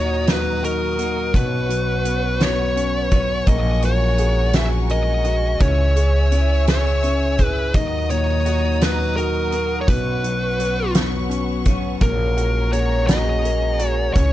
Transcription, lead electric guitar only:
0.00 0.31 C#5 medium
0.30 0.64 B4 medium
0.65 1.35 A#4 medium
1.36 2.45 B4 medium
2.42 3.48 C#5 loud
3.48 3.81 D#5 loud
3.85 4.56 C#5 loud
4.56 4.66 E5 loud
4.91 5.61 D#5 loud
5.61 6.64 C#5 medium
6.69 7.45 C#5 medium
7.45 7.75 B4 medium
7.76 8.08 D#5 loud
8.11 8.84 C#5 loud
8.83 9.16 B4 medium
9.16 9.77 A#4 medium
9.81 9.88 C#5 medium
9.88 10.91 B4 medium
12.02 12.69 A#4 medium
12.72 13.07 C#5 loud
13.07 13.84 D#5 loud
13.84 14.13 C#5 loud
14.14 14.33 C#5 medium

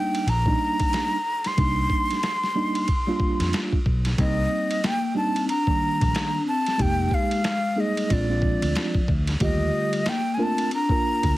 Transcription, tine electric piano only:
0.00 0.25 G3 medium
0.00 0.26 A#3 medium
0.00 0.26 D4 medium
0.00 0.26 D#4 medium
0.46 1.15 G3 medium
0.46 1.16 A#3 medium
0.46 1.16 D4 medium
0.46 1.16 D#4 medium
1.57 2.18 G3 medium
1.57 2.19 A#3 medium
1.57 2.19 D4 medium
1.57 2.19 D#4 medium
2.55 2.86 G3 medium
2.55 2.86 A#3 medium
2.55 2.86 D4 medium
2.55 2.87 D#4 medium
3.07 3.76 G3 medium
3.07 3.77 A#3 medium
3.07 3.77 D4 medium
3.07 3.77 F4 medium
4.17 4.79 G3 medium
4.17 4.79 A#3 medium
4.17 4.80 C4 medium
4.17 4.80 D#4 medium
5.15 5.46 G3 medium
5.15 5.46 A#3 medium
5.15 5.47 D4 medium
5.15 5.47 D#4 medium
5.67 6.38 D#3 medium
5.67 6.37 G3 medium
5.67 6.37 A#3 medium
5.67 6.38 D4 medium
6.78 7.40 G#3 medium
6.78 7.40 A#3 medium
6.78 7.40 D#4 medium
6.78 7.41 G4 medium
7.76 8.07 G#3 medium
7.76 8.07 A#3 medium
7.76 8.08 D#4 medium
7.76 8.08 G#4 medium
8.09 8.25 G#3 medium
8.09 8.26 C4 medium
8.09 8.26 D4 medium
8.09 8.26 F4 medium
8.29 8.98 G#3 medium
8.29 8.98 C4 medium
8.29 8.99 D4 medium
8.29 8.99 F4 medium
9.40 10.02 D3 medium
9.40 10.01 A3 medium
9.40 10.02 F4 medium
9.40 10.02 G4 medium
10.37 10.68 A3 medium
10.37 10.69 D4 medium
10.37 10.69 F4 medium
10.37 10.69 A#4 medium
10.89 11.38 A#3 medium
10.89 11.38 D4 medium
10.89 11.38 F4 medium
10.89 11.38 A#4 medium

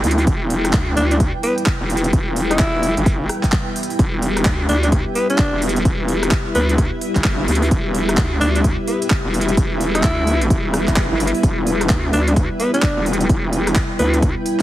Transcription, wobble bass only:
0.04 0.26 D2 medium
0.27 0.72 E1 loud
0.74 0.95 D2 medium
0.97 1.32 D2 medium
1.81 2.12 E1 loud
2.13 2.58 E1 loud
2.60 2.95 E1 medium
2.97 3.28 G1 loud
3.99 4.44 E1 loud
4.46 4.68 D2 loud
4.69 5.04 D2 medium
5.53 5.84 E1 medium
5.85 6.30 E1 loud
6.55 6.90 D2 medium
7.16 7.47 G1 loud
7.48 7.70 D2 medium
7.71 8.16 E1 loud
8.18 8.40 D2 loud
8.41 8.76 D2 medium
9.25 9.56 E1 medium
9.57 10.02 E1 medium
10.04 10.49 D2 medium
10.50 10.86 E1 loud
10.88 11.09 E1 loud
11.11 11.32 G1 medium
11.43 11.88 E1 loud
11.90 12.12 D2 medium
12.13 12.48 D2 loud
12.97 13.28 E1 medium
13.29 13.75 E1 loud
13.99 14.35 D2 medium

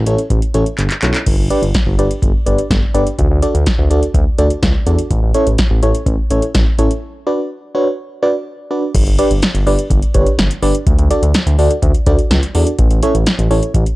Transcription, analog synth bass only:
0.07 0.16 A1 loud
0.30 0.40 A1 loud
0.55 0.64 A1 loud
0.79 0.88 G1 medium
1.03 1.12 B1 medium
1.27 1.36 G1 loud
1.38 1.48 G1 medium
1.62 1.72 G1 medium
1.86 1.96 G1 loud
1.99 2.08 G1 loud
2.22 2.32 G1 loud
2.46 2.56 G1 loud
2.71 2.80 G1 loud
2.94 3.04 G1 loud
3.19 3.28 D2 loud
3.31 3.40 D2 loud
3.55 3.64 D2 loud
3.79 3.88 D2 medium
3.91 4.00 D2 loud
4.14 4.24 D2 loud
4.39 4.48 D2 loud
4.63 4.72 C#2 loud
4.87 4.96 E2 medium
5.11 5.20 A1 loud
5.22 5.32 A1 loud
5.47 5.56 A1 medium
5.71 5.80 A1 loud
5.83 5.92 A1 loud
6.06 6.16 A1 loud
6.31 6.40 A1 loud
6.55 6.64 A1 loud
6.79 6.88 A1 loud
8.95 9.04 G1 loud
9.07 9.16 G1 medium
9.31 9.40 G1 medium
9.55 9.64 G1 loud
9.66 9.76 G1 loud
9.90 10.00 G1 loud
10.15 10.24 G1 loud
10.38 10.48 G1 loud
10.63 10.72 G1 loud
10.87 10.96 D2 loud
10.99 11.08 D2 loud
11.23 11.32 D2 loud
11.47 11.56 D2 loud
11.59 11.68 D2 loud
11.82 11.92 D2 loud
12.07 12.16 D2 loud
12.30 12.40 C#2 loud
12.55 12.64 E2 medium
12.79 12.88 A1 loud
12.91 13.00 A1 loud
13.15 13.24 A1 medium
13.39 13.48 A1 loud
13.51 13.60 A1 loud
13.74 13.84 A1 loud

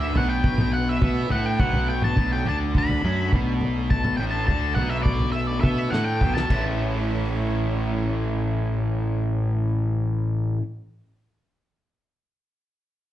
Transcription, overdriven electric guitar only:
0.00 0.14 D3 medium
0.15 1.01 B2 medium
1.02 1.30 B3 medium
1.31 1.59 A3 medium
1.60 2.16 B2 medium
2.18 2.45 B2 medium
2.46 3.03 D3 medium
3.05 3.32 F#3 medium
3.34 4.19 B2 medium
4.20 4.48 A2 medium
4.49 4.77 D3 medium
4.77 5.63 B2 medium
5.64 5.92 B3 medium
5.93 6.21 A3 medium
6.22 6.51 B2 medium
6.50 10.61 A2 medium
6.50 10.61 E3 medium
6.50 10.62 A3 medium
6.50 10.62 C#4 medium
6.50 10.63 E4 medium

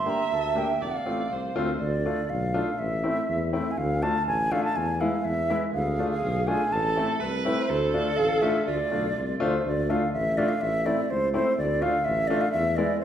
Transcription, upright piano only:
0.06 0.19 A#3 medium
0.06 0.19 D4 medium
0.06 0.19 G4 medium
0.55 0.68 A#3 medium
0.55 0.68 D4 medium
0.55 0.69 G4 medium
1.06 1.18 A3 medium
1.06 1.19 C4 medium
1.06 1.19 F4 medium
1.56 1.68 A3 medium
1.56 1.68 C4 medium
1.56 1.68 F4 medium
2.06 2.18 A3 medium
2.06 2.18 D4 medium
2.06 2.18 F4 medium
2.54 2.67 A3 medium
2.54 2.67 D4 medium
2.54 2.67 F4 medium
3.04 3.16 A3 medium
3.04 3.16 C4 medium
3.04 3.16 E4 medium
3.53 3.66 A3 medium
3.53 3.65 C4 medium
3.53 3.66 E4 medium
4.03 4.15 A3 medium
4.03 4.15 D4 medium
4.03 4.15 F4 medium
4.52 4.64 A3 medium
4.52 4.64 D4 medium
4.52 4.64 F4 medium
5.01 5.13 G#3 medium
5.01 5.13 B3 medium
5.01 5.13 E4 medium
5.50 5.62 G#3 medium
5.50 5.62 B3 medium
5.50 5.62 E4 medium
5.99 6.11 A3 medium
5.99 6.11 D4 medium
5.99 6.11 F4 medium
6.48 6.60 A3 medium
6.48 6.60 D4 medium
6.48 6.60 F4 medium
6.97 7.09 A3 medium
6.97 7.09 C4 medium
6.97 7.09 E4 medium
7.45 7.58 A3 medium
7.45 7.58 C4 medium
7.45 7.58 E4 medium
7.94 8.06 A3 medium
7.94 8.06 D4 medium
7.94 8.06 F4 medium
8.42 8.55 A3 medium
8.42 8.55 D4 medium
8.42 8.55 F4 medium
8.91 9.04 A3 medium
8.91 9.04 D4 medium
8.91 9.04 F4 medium
9.40 9.52 A3 medium
9.40 9.52 D4 medium
9.40 9.52 F4 loud
9.89 10.01 A3 medium
9.89 10.01 D4 medium
9.89 10.01 F4 medium
10.38 10.50 A3 medium
10.38 10.50 D4 medium
10.38 10.50 F4 medium
10.86 10.98 A3 medium
10.86 10.98 C4 medium
10.86 10.98 E4 medium
11.34 11.46 A3 medium
11.34 11.46 C4 medium
11.34 11.46 E4 medium
11.81 11.94 A3 medium
11.81 11.94 D4 medium
11.81 11.94 F4 medium
12.30 12.42 A3 medium
12.30 12.42 D4 medium
12.30 12.42 F4 medium
12.78 12.90 G#3 medium
12.78 12.90 B3 medium
12.78 12.90 E4 medium

